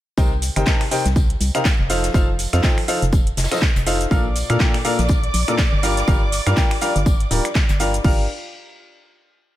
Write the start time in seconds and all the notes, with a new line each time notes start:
0.18 C2 C3 D#4 G4 A#4 C5 G5, kick, tambourine, shaker
0.42 open hi-hat, tambourine, shaker
0.56 G1 C3 D#4 G4 A#4 C5 G5, finger snap, closed hi-hat, shaker
0.66 C3 D#4 G4 A#4 C5 A5, kick, snare, clap, tambourine, shaker
0.81 finger snap, snare, open hi-hat
0.91 C3 D#4 G4 A#4 C5 G5, open hi-hat, tambourine, shaker
1.06 C2, snare, closed hi-hat, shaker
1.16 kick, tambourine, shaker
1.30 closed hi-hat
1.41 C2, open hi-hat, tambourine, shaker
1.55 C3 D#4 G4 A#4 C5 F5, finger snap, closed hi-hat, shaker
1.65 kick, snare, clap, tambourine, shaker
1.79 F1
1.89 F3 D#4 F4 A4 C5 F5, snare, open hi-hat, tambourine, shaker
2.03 snare, closed hi-hat, shaker
2.14 F1 F3 D#4 F4 A4 C5 F5, kick, tambourine, shaker
2.39 open hi-hat, tambourine, shaker
2.53 F2 F3 D#4 F4 A4 C5 F5, finger snap, snare, closed hi-hat, shaker
2.63 F3 D#4 F4 A4 C5 G5, kick, snare, clap, tambourine, shaker
2.78 finger snap, open hi-hat
2.88 F3 D#4 F4 A4 C5 F5, open hi-hat, tambourine, shaker
3.02 F1, closed hi-hat, shaker
3.12 kick, tambourine, shaker
3.27 closed hi-hat
3.37 F1, snare, open hi-hat, tambourine, shaker
3.44 snare, tambourine
3.51 F3 D#4 F4 A4 C5 D#5, finger snap, snare, closed hi-hat, tambourine, shaker
3.56 snare, tambourine
3.62 kick, snare, clap, shaker
3.76 F1, clap, closed hi-hat
3.86 D#4 F4 A4 C5 F5, snare, open hi-hat, tambourine, shaker
4.01 closed hi-hat, shaker
4.11 A#1 A#2 D4 F4 A4 A#4 D5 F5 D6, kick, tambourine, shaker
4.36 open hi-hat, tambourine, shaker
4.50 A#2 D4 F4 A4 A#4 F5, finger snap, closed hi-hat, shaker
4.60 A#2 D4 F4 A4 A#4 G5, kick, snare, clap, tambourine, shaker
4.74 finger snap, snare, open hi-hat
4.85 A#2 D4 F4 A4 A#4 F5, open hi-hat, tambourine, shaker
4.99 A#1, snare, closed hi-hat, shaker
5.09 kick, tambourine, shaker
5.24 closed hi-hat
5.34 A#1, open hi-hat, tambourine, shaker
5.48 A#2 D4 F4 A4 A#4 D5, finger snap, closed hi-hat, shaker
5.58 kick, snare, clap, tambourine, shaker
5.73 G1
5.83 G3 D4 F4 G4 A#4 F5, snare, open hi-hat, tambourine, shaker
5.97 snare, closed hi-hat, shaker
6.08 G1 G3 D4 F4 G4 A#4 F5, kick, tambourine, shaker
6.32 open hi-hat, tambourine, shaker
6.46 G2 G3 D4 F4 G4 A#4 F5, finger snap, snare, closed hi-hat, shaker
6.57 G3 D4 F4 G4 A#4 G5, kick, snare, clap, tambourine, shaker
6.71 finger snap, open hi-hat
6.81 G3 D4 F4 G4 A#4 F5, open hi-hat, tambourine, shaker
6.96 G1, closed hi-hat, shaker
7.06 kick, tambourine, shaker
7.20 closed hi-hat
7.31 D1 G3 D4 F4 G4 A#4 D5, open hi-hat, tambourine, shaker
7.45 finger snap, closed hi-hat, shaker
7.55 kick, snare, clap, tambourine, shaker
7.69 G1, clap, closed hi-hat
7.79 G3 D4 F4 G4 A#4 F5, snare, open hi-hat, tambourine, shaker
7.94 closed hi-hat, shaker
8.04 G1 D4 F4 G4 A#4 F5, kick, crash